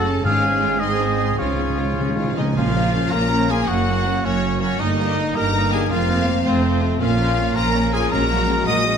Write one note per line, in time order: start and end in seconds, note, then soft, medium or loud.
0.00 0.25 F#1 medium
0.00 0.25 F#2 medium
0.00 0.26 C#3 medium
0.00 0.23 C#4 soft
0.00 0.24 A4 medium
0.06 0.25 C#4 soft
0.06 0.25 A4 medium
0.06 0.25 A5 medium
0.24 1.37 G#1 medium
0.24 1.37 G#2 medium
0.24 0.77 G#2 medium
0.24 0.78 G#2 medium
0.24 0.42 G#3 medium
0.24 0.78 C#4 medium
0.24 0.42 F4 medium
0.24 0.77 G#4 medium
0.24 0.42 F5 medium
0.24 0.81 F5 medium
0.43 0.62 C#4 medium
0.43 0.62 G#4 medium
0.43 0.62 G#5 medium
0.61 0.81 G#3 soft
0.61 0.81 F4 medium
0.61 0.82 F5 medium
0.80 1.38 G#2 medium
0.80 1.39 C4 medium
0.80 0.98 D#4 soft
0.80 0.98 G#4 medium
0.80 1.40 G#4 medium
0.80 1.38 D#5 medium
0.80 0.99 C6 medium
1.00 1.19 C4 soft
1.00 1.20 C5 soft
1.00 1.20 G#5 soft
1.19 1.39 D#4 soft
1.19 1.39 G#4 soft
1.19 1.39 C6 soft
1.39 2.37 C#2 soft
1.39 2.35 G#2 soft
1.39 1.45 C#3 soft
1.39 1.94 C#3 medium
1.39 1.57 G#3 soft
1.39 2.35 C#4 soft
1.39 1.57 F4 soft
1.39 2.36 F4 soft
1.39 2.35 C#5 medium
1.39 1.58 F5 soft
1.46 1.52 C#3 soft
1.54 1.60 C#3 soft
1.58 1.68 C#3 soft
1.58 1.78 C#4 soft
1.58 1.78 G#4 soft
1.58 1.79 G#5 soft
1.69 1.76 C#3 soft
1.77 1.84 C#3 soft
1.77 1.98 G#3 soft
1.77 1.98 F4 soft
1.77 1.98 F5 soft
1.85 1.92 C#3 soft
1.93 2.00 C#3 soft
1.93 2.15 C#3 soft
1.98 2.08 C#3 soft
1.98 2.18 C#4 soft
1.98 2.17 G#4 soft
1.98 2.18 G#5 soft
2.09 2.15 C#3 medium
2.15 2.23 C#3 medium
2.15 2.37 D#3 soft
2.15 2.36 G#3 soft
2.15 2.34 F4 soft
2.15 2.36 F5 soft
2.24 2.31 C#3 medium
2.32 2.39 C#3 medium
2.32 2.55 F3 soft
2.32 2.54 D#4 soft
2.37 2.48 C#3 medium
2.37 2.57 C#4 soft
2.37 2.56 G#4 soft
2.37 2.45 D#5 soft
2.37 2.56 G#5 soft
2.55 3.06 A#1 medium
2.55 3.08 A#2 medium
2.55 3.06 A#2 medium
2.55 2.74 F3 medium
2.55 4.76 A#3 medium
2.55 2.74 A#3 soft
2.55 4.76 C#4 medium
2.55 2.74 C#4 soft
2.55 3.13 F4 medium
2.55 3.11 F5 medium
2.75 2.93 F3 soft
2.75 2.94 A#3 soft
2.75 2.93 A#3 soft
2.75 2.94 F4 soft
2.93 3.11 F3 soft
2.93 3.11 A#3 soft
2.93 3.12 C#4 soft
3.10 3.62 A#1 medium
3.10 3.61 A#2 medium
3.10 3.30 F3 soft
3.10 3.30 A#3 soft
3.10 3.31 A#3 soft
3.10 3.30 F4 soft
3.10 3.52 A#4 medium
3.10 3.49 A#5 medium
3.31 3.49 F3 soft
3.31 3.49 A#3 soft
3.31 3.49 C#4 soft
3.49 3.69 F3 soft
3.49 3.68 A#3 soft
3.49 3.68 F4 medium
3.49 3.69 G#4 medium
3.49 3.68 G#5 medium
3.68 4.18 F#1 medium
3.68 4.17 F#2 medium
3.68 3.86 F#3 soft
3.68 3.86 A#3 soft
3.68 3.86 C#4 soft
3.68 4.27 F#4 medium
3.68 4.24 F#5 medium
3.87 4.04 F#3 soft
3.87 4.06 A#3 soft
3.87 4.05 A#3 soft
3.87 4.06 F#4 soft
4.05 4.24 F#3 soft
4.05 4.24 A#3 soft
4.05 4.25 C#4 soft
4.24 4.73 F#1 medium
4.24 4.74 F#2 medium
4.24 4.43 F#3 soft
4.24 4.43 A#3 soft
4.24 4.61 C#4 medium
4.24 4.43 F#4 soft
4.24 4.59 C#5 medium
4.42 4.60 F#3 soft
4.42 4.60 A#3 soft
4.42 4.60 C#4 soft
4.60 4.80 F#3 soft
4.60 4.79 A#3 soft
4.60 4.82 C#4 medium
4.60 4.80 F#4 soft
4.60 4.79 C#5 medium
4.79 5.28 G1 medium
4.79 5.29 G2 medium
4.79 4.97 G3 soft
4.79 6.42 A#3 medium
4.79 4.97 A#3 soft
4.79 4.97 D#4 soft
4.79 5.37 D#4 medium
4.79 5.89 D#4 medium
4.79 5.35 D#5 medium
4.99 5.16 G3 soft
4.99 5.17 A#3 soft
4.99 5.16 A#3 soft
4.99 5.17 G4 soft
5.17 5.35 G3 soft
5.17 5.35 A#3 soft
5.17 5.35 D#4 soft
5.34 5.85 G1 medium
5.34 5.84 G2 medium
5.34 5.53 G3 soft
5.34 5.53 A#3 soft
5.34 5.53 G4 soft
5.34 5.72 A#4 medium
5.34 5.72 A#5 medium
5.54 5.71 G3 soft
5.54 5.71 A#3 soft
5.54 5.71 D#4 soft
5.71 5.91 G3 soft
5.71 5.88 A#3 soft
5.71 5.89 A#3 soft
5.71 5.90 G4 soft
5.71 5.90 G#4 medium
5.71 5.91 G#5 medium
5.89 6.39 F1 medium
5.89 6.39 F2 medium
5.89 6.07 A#3 soft
5.89 6.08 A#3 soft
5.89 6.07 C4 soft
5.89 7.01 C4 medium
5.89 6.30 F4 medium
5.89 6.45 F5 medium
6.09 6.28 F3 soft
6.09 6.25 A#3 soft
6.09 6.25 C4 soft
6.09 6.27 C4 soft
6.26 6.45 A#3 soft
6.26 6.42 C4 soft
6.44 6.94 F1 medium
6.44 6.94 F2 medium
6.44 6.63 A3 soft
6.44 7.01 A3 medium
6.44 6.61 C4 soft
6.44 6.82 C4 medium
6.44 6.62 F4 soft
6.44 6.82 C5 medium
6.63 6.82 F3 soft
6.63 6.81 C4 medium
6.63 6.82 C4 soft
6.63 6.81 F4 soft
6.81 7.00 A3 soft
6.81 7.01 C4 medium
6.81 7.00 F4 soft
6.98 7.50 A#1 medium
6.98 7.50 A#2 medium
6.98 7.17 A#3 medium
6.98 8.11 A#3 medium
6.98 7.17 C#4 medium
6.98 8.12 C#4 medium
6.98 7.57 F4 medium
6.98 7.53 F5 medium
7.17 7.37 F3 soft
7.17 7.37 A#3 soft
7.17 7.37 C#4 medium
7.17 7.36 F4 soft
7.37 7.56 A#3 soft
7.37 7.56 C#4 soft
7.55 8.05 A#1 medium
7.55 8.05 A#2 medium
7.55 7.75 F3 medium
7.55 7.74 A#3 medium
7.55 7.75 C#4 soft
7.55 7.74 F4 medium
7.55 7.95 A#4 medium
7.55 7.93 A#5 medium
7.72 7.92 A#3 medium
7.72 7.91 C#4 medium
7.91 8.12 F3 medium
7.91 8.11 A#3 medium
7.91 8.12 C#4 soft
7.91 8.11 F4 medium
7.91 8.13 G#4 medium
7.91 8.11 G#5 medium
8.11 8.61 A#1 medium
8.11 8.60 A#2 medium
8.11 8.29 G#3 medium
8.11 8.98 G#3 medium
8.11 8.28 C#4 medium
8.11 8.98 F#4 medium
8.11 8.67 A#4 medium
8.11 8.66 A#5 medium
8.28 8.49 F#3 medium
8.28 8.48 A#3 soft
8.28 8.48 F#4 soft
8.47 8.67 G#3 soft
8.47 8.66 C#4 soft
8.66 8.98 A#1 medium
8.66 8.98 A#2 medium
8.66 8.86 F#3 soft
8.66 8.86 A#3 medium
8.66 8.86 F#4 medium
8.66 8.98 D#5 medium
8.66 8.98 D#6 medium
8.85 8.98 G#3 soft
8.85 8.98 C#4 soft